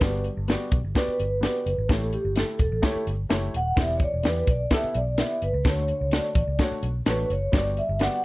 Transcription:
0.00 0.28 G1 loud
0.00 0.68 G2 medium
0.00 0.26 B3 medium
0.00 0.26 F#4 medium
0.00 0.27 G4 medium
0.00 0.22 B4 medium
0.00 0.27 D5 medium
0.00 kick loud
0.00 snare loud
0.00 closed hi-hat medium
0.24 closed hi-hat medium
0.37 0.54 G1 medium
0.48 0.73 B3 medium
0.48 0.74 F#4 medium
0.48 0.74 G4 medium
0.48 0.74 D5 medium
0.48 snare loud
0.48 closed hi-hat medium
0.72 0.80 B1 medium
0.72 kick loud
0.72 closed hi-hat medium
0.84 0.93 G1 medium
0.95 1.20 B3 medium
0.95 1.20 F#4 medium
0.95 1.21 G4 medium
0.95 1.86 B4 loud
0.95 1.21 D5 medium
0.95 kick medium
0.95 snare loud
0.95 closed hi-hat medium
1.08 muted fingered electric bass stroke soft
1.20 1.45 G1 medium
1.20 closed hi-hat medium
1.41 1.67 B3 medium
1.41 1.67 F#4 medium
1.41 1.68 G4 medium
1.41 1.68 D5 medium
1.41 snare loud
1.41 closed hi-hat medium
1.66 1.75 F#1 medium
1.66 closed hi-hat medium
1.78 1.86 G#1 medium
1.89 2.15 A1 loud
1.89 2.56 A2 medium
1.89 2.14 A3 medium
1.89 2.14 E4 medium
1.89 2.15 G4 medium
1.89 2.14 A4 medium
1.89 2.15 C#5 medium
1.89 kick medium
1.89 snare loud
1.89 closed hi-hat medium
2.13 2.37 G4 medium
2.13 closed hi-hat medium
2.25 2.42 G1 medium
2.35 2.61 A3 medium
2.35 2.61 E4 medium
2.35 2.61 G4 medium
2.35 2.62 A4 medium
2.35 2.60 A4 medium
2.35 snare loud
2.35 closed hi-hat medium
2.59 2.68 E1 medium
2.59 3.04 A4 medium
2.59 kick medium
2.59 closed hi-hat medium
2.72 2.80 A1 loud
2.82 3.08 A3 medium
2.82 3.08 E4 medium
2.82 3.08 G4 medium
2.82 3.09 C#5 medium
2.82 kick medium
2.82 snare loud
2.82 closed hi-hat medium
2.96 muted fingered electric bass stroke soft
3.07 3.24 G1 medium
3.07 closed hi-hat medium
3.29 3.48 F#1 medium
3.29 3.55 A3 medium
3.29 3.55 E4 medium
3.29 3.55 G4 medium
3.29 3.56 C#5 medium
3.29 snare loud
3.29 closed hi-hat medium
3.54 3.71 D#1 medium
3.54 3.79 F#5 loud
3.54 closed hi-hat medium
3.76 4.03 E1 loud
3.76 4.43 E3 medium
3.76 4.02 B3 medium
3.76 4.02 E4 medium
3.76 4.02 G4 medium
3.76 4.03 D5 medium
3.76 3.95 E5 loud
3.76 kick loud
3.76 snare loud
3.76 closed hi-hat medium
3.97 4.02 C#5 medium
3.97 kick medium
3.97 closed hi-hat medium
4.03 4.23 D5 loud
4.14 4.22 E1 medium
4.23 4.42 E2 medium
4.23 4.49 B3 medium
4.23 4.49 E4 medium
4.23 4.49 G4 medium
4.23 4.49 B4 medium
4.23 4.50 D5 medium
4.23 snare medium
4.23 closed hi-hat medium
4.47 4.65 B1 medium
4.47 4.71 D5 medium
4.47 kick medium
4.47 closed hi-hat medium
4.71 4.96 B3 medium
4.71 4.96 E4 medium
4.71 4.97 G4 medium
4.71 4.97 A4 medium
4.71 4.97 E5 medium
4.71 kick medium
4.71 snare loud
4.71 closed hi-hat medium
4.84 muted fingered electric bass stroke soft
4.95 5.21 B1 medium
4.95 5.17 D5 medium
4.95 closed hi-hat medium
5.18 5.43 B3 medium
5.18 5.44 E4 medium
5.18 5.44 G4 medium
5.18 5.44 D5 medium
5.18 5.43 E5 medium
5.18 snare medium
5.18 closed hi-hat medium
5.42 5.51 G1 medium
5.42 5.64 B4 medium
5.42 closed hi-hat medium
5.53 5.62 C#2 medium
5.65 5.91 D2 loud
5.65 6.32 D3 medium
5.65 5.90 A3 medium
5.65 5.90 D4 medium
5.65 5.91 F#4 medium
5.65 5.91 C#5 medium
5.65 6.09 C#5 medium
5.65 kick loud
5.65 snare loud
5.65 closed hi-hat medium
5.88 closed hi-hat medium
6.01 6.18 C#2 medium
6.11 6.37 A3 medium
6.11 6.37 D4 medium
6.11 6.38 F#4 medium
6.11 6.38 C#5 medium
6.11 6.56 D5 medium
6.11 snare loud
6.11 closed hi-hat medium
6.35 6.44 A1 medium
6.35 kick loud
6.35 closed hi-hat medium
6.47 6.56 C#2 medium
6.59 6.84 A3 medium
6.59 6.85 D4 medium
6.59 6.85 F#4 medium
6.59 6.85 C#5 medium
6.59 kick medium
6.59 snare loud
6.59 closed hi-hat medium
6.71 muted fingered electric bass stroke soft
6.83 7.00 B1 medium
6.83 closed hi-hat medium
7.06 7.24 A1 medium
7.06 7.31 A3 medium
7.06 7.32 D4 medium
7.06 7.32 F#4 medium
7.06 7.29 B4 medium
7.06 7.32 C#5 medium
7.06 snare loud
7.06 closed hi-hat medium
7.30 7.47 F#1 medium
7.30 7.55 C#5 medium
7.30 closed hi-hat medium
7.52 7.79 G1 loud
7.52 8.20 G2 medium
7.52 7.78 B3 medium
7.52 7.78 F#4 medium
7.52 7.78 G4 medium
7.52 7.79 D5 medium
7.52 kick loud
7.52 snare loud
7.52 closed hi-hat medium
7.56 7.79 D5 loud
7.77 7.99 E5 medium
7.77 closed hi-hat medium
7.89 8.06 G1 loud
7.99 8.24 B3 medium
7.99 8.24 F#4 medium
7.99 8.24 G4 medium
7.99 8.24 D5 medium
7.99 8.24 F#5 loud
7.99 snare medium
7.99 closed hi-hat medium

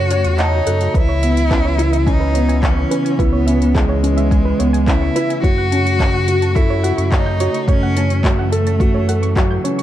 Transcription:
0.00 0.24 F#2 loud
0.00 0.91 C#3 medium
0.00 0.91 A3 medium
0.00 0.96 C#4 medium
0.00 0.40 F#4 loud
0.00 0.91 F#4 medium
0.00 0.96 F#4 medium
0.00 0.66 A4 medium
0.11 0.38 C#5 loud
0.11 0.24 F#6 medium
0.11 closed hi-hat medium
0.24 0.62 E2 medium
0.24 0.34 C#6 loud
0.24 closed hi-hat soft
0.38 0.97 D#4 loud
0.38 0.52 F#5 medium
0.38 0.55 A5 medium
0.38 clap medium
0.38 closed hi-hat soft
0.66 0.88 F#2 medium
0.66 0.83 A4 medium
0.66 0.76 F#6 medium
0.66 closed hi-hat medium
0.81 closed hi-hat soft
0.94 2.86 C#2 loud
0.94 9.83 C#3 medium
0.94 5.39 E3 medium
0.94 5.39 B3 medium
0.94 2.09 E4 loud
0.94 1.04 B4 loud
0.94 kick loud
0.94 closed hi-hat soft
1.09 1.22 C#5 loud
1.23 1.50 B3 medium
1.23 1.29 E5 medium
1.23 closed hi-hat medium
1.37 closed hi-hat soft
1.51 1.78 C#4 medium
1.51 1.57 B4 medium
1.51 kick loud
1.51 clap loud
1.51 closed hi-hat soft
1.65 1.74 C#5 loud
1.78 2.05 E4 loud
1.78 closed hi-hat medium
1.93 2.02 E5 medium
1.93 closed hi-hat soft
2.06 2.34 C#4 medium
2.06 2.65 D#4 loud
2.06 2.16 G#5 loud
2.06 kick loud
2.06 closed hi-hat soft
2.20 2.34 B4 loud
2.34 2.62 B3 medium
2.34 2.44 C#5 medium
2.34 closed hi-hat medium
2.49 2.61 G#5 loud
2.49 closed hi-hat soft
2.63 3.22 C#4 loud
2.63 2.69 G#5 medium
2.63 kick loud
2.63 clap medium
2.63 closed hi-hat soft
2.77 2.86 C#6 medium
2.91 3.18 C#4 medium
2.91 3.01 B4 medium
2.91 closed hi-hat medium
3.05 3.18 G#5 medium
3.05 closed hi-hat soft
3.19 4.54 C#2 loud
3.19 3.78 B3 loud
3.19 3.46 E4 medium
3.19 3.29 B4 loud
3.19 kick loud
3.19 closed hi-hat soft
3.33 3.46 C#5 loud
3.47 3.63 C#4 medium
3.47 3.53 E5 medium
3.47 closed hi-hat medium
3.62 closed hi-hat soft
3.75 4.88 G#3 loud
3.75 3.91 G#4 medium
3.75 3.81 B4 medium
3.75 kick loud
3.75 clap loud
3.75 closed hi-hat soft
3.89 3.99 C#5 loud
4.03 4.30 C#4 medium
4.03 closed hi-hat medium
4.17 4.27 E5 medium
4.17 closed hi-hat soft
4.31 4.41 G#5 loud
4.31 kick loud
4.31 closed hi-hat soft
4.45 4.59 B4 loud
4.59 5.10 C#2 medium
4.59 4.86 B3 medium
4.59 4.69 C#5 loud
4.59 closed hi-hat medium
4.73 4.86 G#5 loud
4.73 closed hi-hat soft
4.87 5.14 C#4 medium
4.87 5.42 E4 loud
4.87 4.93 G#5 medium
4.87 kick loud
4.87 clap loud
4.87 closed hi-hat soft
5.02 5.11 C#6 medium
5.16 5.42 E4 loud
5.16 5.25 B4 loud
5.16 closed hi-hat medium
5.30 5.43 G#5 medium
5.30 closed hi-hat soft
5.42 6.92 F#2 loud
5.42 9.83 A3 medium
5.42 6.56 F#4 loud
5.42 7.65 F#4 medium
5.42 5.70 F#4 medium
5.42 5.53 C#5 loud
5.42 kick loud
5.42 closed hi-hat soft
5.58 5.71 F#5 loud
5.72 5.98 C#4 medium
5.72 5.77 A5 medium
5.72 closed hi-hat medium
5.87 closed hi-hat soft
6.00 6.05 C#5 medium
6.00 kick loud
6.00 clap loud
6.00 closed hi-hat soft
6.14 6.23 F#5 loud
6.28 6.54 F#4 medium
6.28 closed hi-hat medium
6.42 6.51 A5 medium
6.42 closed hi-hat soft
6.55 7.13 E4 loud
6.55 6.83 A4 medium
6.55 6.65 C#6 loud
6.55 kick loud
6.55 closed hi-hat soft
6.70 6.83 C#5 loud
6.84 7.00 F#4 medium
6.84 6.93 F#5 loud
6.84 closed hi-hat medium
6.98 7.49 F#2 medium
6.98 7.11 C#6 loud
6.98 closed hi-hat soft
7.12 7.69 D#4 loud
7.12 7.28 C#5 medium
7.12 7.18 C#6 medium
7.12 kick loud
7.12 clap medium
7.12 closed hi-hat soft
7.26 7.35 G6 medium
7.40 7.67 F#4 medium
7.40 7.50 C#5 loud
7.40 closed hi-hat medium
7.54 7.68 C#6 medium
7.54 closed hi-hat soft
7.67 9.59 F#2 loud
7.67 9.83 E3 medium
7.67 8.25 C#4 loud
7.67 7.78 C#5 loud
7.67 kick loud
7.67 closed hi-hat soft
7.83 7.96 F#5 loud
7.96 8.23 C#4 medium
7.96 8.02 A5 medium
7.96 closed hi-hat medium
8.10 closed hi-hat soft
8.23 9.37 A3 loud
8.23 8.51 F#4 medium
8.23 8.30 C#5 medium
8.23 kick loud
8.23 clap loud
8.23 closed hi-hat soft
8.39 8.48 F#5 loud
8.52 8.79 A4 loud
8.52 closed hi-hat medium
8.67 8.76 A5 medium
8.67 closed hi-hat soft
8.80 9.07 F#4 medium
8.80 8.90 C#6 medium
8.80 kick loud
8.80 closed hi-hat soft
8.95 9.08 C#5 loud
9.09 9.24 A4 medium
9.09 9.18 F#5 medium
9.09 closed hi-hat medium
9.22 9.36 C#6 loud
9.22 closed hi-hat soft
9.36 9.83 F#3 medium
9.36 9.63 F#4 medium
9.36 9.42 C#6 medium
9.36 kick loud
9.36 clap medium
9.36 closed hi-hat soft
9.51 9.60 G6 medium
9.64 9.83 C#4 medium
9.64 9.74 C#5 loud
9.64 closed hi-hat medium
9.79 9.83 C#6 medium
9.79 closed hi-hat soft

